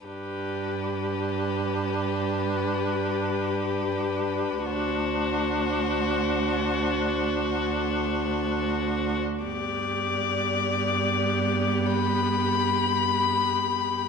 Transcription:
0.05 G2 D4 G4 B4
4.64 D2 D4 F#4 C5
9.44 G2 B3 G4 D5
11.86 B5

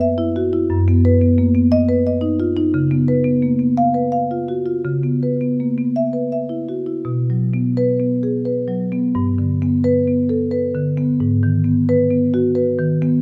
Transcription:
Already playing: F#2 B4
0.01 E5
0.18 E4
0.36 F#4
0.53 E4
0.70 F#2
0.88 B3
1.05 B4
1.21 B3
1.38 A#3
1.55 B3
1.72 D#5
1.89 B4
2.07 D#5
2.21 D#4
2.40 F4
2.57 D#4
2.74 C#3
2.91 B3
3.08 B4
3.24 B3
3.42 A#3
3.59 B3
3.77 F5
3.94 B4
4.12 F5
4.31 F4
4.48 F#4
4.66 F4
4.85 C#3
5.03 B3
5.23 B4
5.41 B3
5.60 A#3
5.78 B3
5.96 E5
6.13 B4
6.32 E5
6.49 E4
6.69 F#4
6.86 E4
7.05 B2
7.30 F#3
7.54 B3
7.77 B4
8.00 B3
8.23 G#4
8.45 B4
8.68 F#3
8.92 B3
9.15 G2
9.38 D3
9.62 B3
9.84 B4
10.08 B3
10.29 A4
10.51 B4
10.75 D3
10.97 B3
11.20 G#2
11.43 D#3
11.64 B3
11.89 B4
12.11 B3
12.34 F#4
12.55 B4
12.79 D#3
13.02 B3

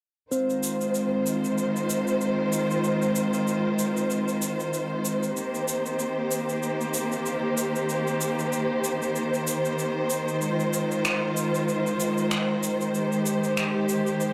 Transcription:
0.31 D#3 G#3 C4 F4 C5, shaker
0.50 shaker
0.63 shaker
0.81 shaker
0.95 shaker
1.26 shaker
1.44 shaker
1.58 shaker
1.76 shaker
1.90 shaker
2.07 shaker
2.21 shaker
2.53 shaker
2.71 shaker
2.84 shaker
3.02 shaker
3.15 shaker
3.34 shaker
3.48 shaker
3.79 shaker
3.97 shaker
4.10 shaker
4.28 shaker
4.42 shaker
4.60 shaker
4.73 shaker
5.05 shaker
5.23 shaker
5.37 D#3 A#3 G4 C5, shaker
5.55 shaker
5.68 shaker
5.86 shaker
5.99 shaker
6.31 shaker
6.49 shaker
6.63 shaker
6.81 shaker
6.94 shaker
7.12 shaker
7.26 shaker
7.57 shaker
7.76 shaker
7.89 shaker
8.07 shaker
8.21 shaker
8.39 shaker
8.52 shaker
8.84 shaker
9.02 shaker
9.16 shaker
9.34 shaker
9.47 shaker
9.65 shaker
9.79 shaker
10.10 shaker
10.28 shaker
10.41 G#3 F4, shaker
10.60 shaker
10.73 shaker
10.91 shaker
11.05 finger snap, shaker
11.37 shaker
11.55 shaker
11.68 shaker
11.87 shaker
12.00 shaker
12.18 shaker
12.31 finger snap, shaker
12.63 shaker
12.81 shaker
12.94 G4, shaker
13.12 shaker
13.26 shaker
13.44 shaker
13.57 finger snap, shaker
13.89 shaker
14.07 shaker
14.21 shaker

